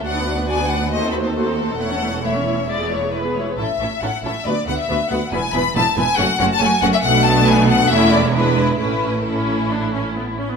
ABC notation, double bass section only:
X:1
M:4/4
L:1/8
Q:1/4=137
K:A
V:1 name="Double bass section" clef=bass
D,,4 ^D,,4 | E,,,6- E,,, z | A,,, A,,, A,,, A,,, D,, D,, D,, D,, | E,,, E,,, E,,, E,,, F,,, F,,, F,,, F,,, |
B,,,4 E,,,4 | A,,,6- A,,, z |]